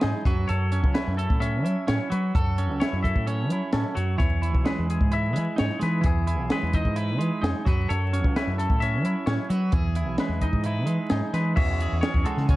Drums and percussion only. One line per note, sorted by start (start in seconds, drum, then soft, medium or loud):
0.01 snare loud
0.01 closed hi-hat medium
0.25 kick loud
0.25 snare soft
0.25 closed hi-hat medium
0.49 closed hi-hat medium
0.72 closed hi-hat medium
0.84 kick medium
0.95 snare loud
0.95 closed hi-hat medium
1.19 closed hi-hat medium
1.30 kick medium
1.42 closed hi-hat medium
1.66 closed hi-hat medium
1.88 snare medium
1.88 closed hi-hat medium
2.12 closed hi-hat medium
2.35 kick loud
2.35 closed hi-hat medium
2.58 closed hi-hat medium
2.81 snare medium
2.81 closed hi-hat medium
3.04 kick medium
3.04 closed hi-hat medium
3.16 kick medium
3.27 closed hi-hat medium
3.50 closed hi-hat medium
3.73 snare loud
3.73 closed hi-hat medium
3.97 closed hi-hat medium
4.20 kick loud
4.20 closed hi-hat medium
4.43 closed hi-hat medium
4.55 kick medium
4.66 snare loud
4.66 closed hi-hat medium
4.90 closed hi-hat medium
5.01 kick medium
5.12 closed hi-hat medium
5.36 closed hi-hat medium
5.58 snare loud
5.58 closed hi-hat medium
5.81 snare soft
5.81 closed hi-hat medium
6.04 kick loud
6.04 closed hi-hat medium
6.27 closed hi-hat medium
6.50 snare loud
6.50 closed hi-hat medium
6.73 kick medium
6.73 closed hi-hat medium
6.85 kick medium
6.96 closed hi-hat medium
7.21 closed hi-hat medium
7.44 snare loud
7.44 closed hi-hat medium
7.66 kick loud
7.66 snare soft
7.66 closed hi-hat medium
7.90 closed hi-hat medium
8.14 closed hi-hat medium
8.24 kick medium
8.36 snare loud
8.36 closed hi-hat medium
8.59 closed hi-hat medium
8.70 kick medium
8.82 closed hi-hat medium
9.05 closed hi-hat medium
9.27 snare loud
9.27 closed hi-hat medium
9.50 closed hi-hat medium
9.72 kick loud
9.72 closed hi-hat medium
9.95 closed hi-hat medium
10.18 snare loud
10.18 closed hi-hat medium
10.41 kick medium
10.41 closed hi-hat medium
10.53 kick medium
10.64 closed hi-hat medium
10.87 closed hi-hat medium
11.10 snare loud
11.10 closed hi-hat medium
11.34 snare soft
11.34 closed hi-hat medium
11.57 kick loud
11.57 crash loud
11.80 closed hi-hat medium
12.03 snare loud
12.03 closed hi-hat medium
12.14 kick medium
12.26 closed hi-hat medium
12.37 snare soft
12.49 kick loud
12.49 closed hi-hat medium